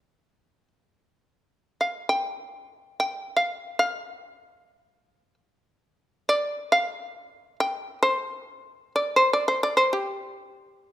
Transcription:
shamisen
Already playing: G5
1.81 F5
2.09 G5
3.00 G5
3.37 F5
3.79 F5
4.07 F#5
4.25 G5
6.29 D5
6.72 F5
7.60 G5
8.03 C5
8.96 D5
9.16 C5
9.33 D5
9.48 C5
9.63 D5
9.77 C5
9.93 G4

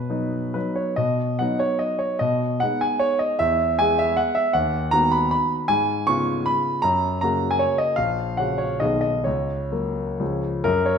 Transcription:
grand piano
Already playing: B2 B4
0.10 F#3 B3 D#4
0.54 F#3 B3 D#4 B4
0.76 C#5
0.96 B2 D#5
1.39 F#3 B3 D#4 F#5
1.59 C#5
1.79 D#5
1.99 C#5
2.19 B2 D#5
2.60 G#3 B3 D#4 F#5
2.81 G#5
2.99 C#5
3.19 D#5
3.39 E2 E5
3.79 G#3 B3 G#4 G#5
3.99 E5
4.17 F#5
4.35 E5
4.53 D#2 F#5
4.91 D#3 B3 F#4 A#5
5.12 B5
5.31 B5
5.68 G#2 G#5
6.07 C#3 B3 F4 C#6
6.46 B5
6.82 F#2 A#5
7.21 C#3 A#3 F#4 A#5
7.51 G#5
7.59 C#5
7.78 D#5
7.96 A#1 F5
8.37 C#3 C#4 F#4 F#5
8.58 C#5
8.80 B1 D#3 B3 G#4 D#5
9.01 D#5
9.24 C#2 C#5
9.72 F#3 A#3 A#4
10.19 C#2 F3 C#4 G#4
10.64 F#2 A#4
10.86 C#5

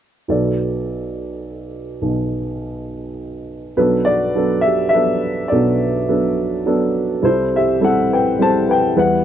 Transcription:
upright piano
0.28 B1 B2 F#3 B3 A4 D5
2.02 B1 B2
3.77 B1 B2 F#3 B3 D4 A4 B4
4.05 F#4 D5
4.35 F#3 B3 D4 A4
4.61 G4 E5
4.89 F#3 E5
4.93 B3 D4 A4 B4
5.48 B1 F#3 B3 D4 D5
5.52 B2 F#4 A4
6.09 F#3 B3 D4 A4
6.66 F#3 B3 D4 A4
7.22 C2 C3 G3 C4 E4 A4 C5
7.56 G4 E5
7.80 G3 C4 E4 A4 F#5
7.84 A4
8.13 B4 G5
8.39 G3 C4 E4 A4 C5 A5
8.69 B4 G5
8.96 E2 E3 G3 B3 E4 B4 F#5

